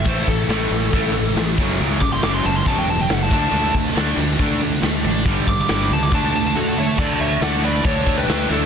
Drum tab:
CC |x---------------|----------------|----------------|----------------|
HH |----o---o---o---|o---o---o---o---|o---o---o---o---|o---o---o-------|
SD |----o-------o---|---oo-------o---|---oo-------o---|----o-----------|
BD |o-o-----o-----o-|--o-----o-----o-|--o-----o-------|o-o-----o-------|

CC |x---------------|
HH |--o-o-o-o-o-o-o-|
SD |----o-------o---|
BD |o-------o-o-----|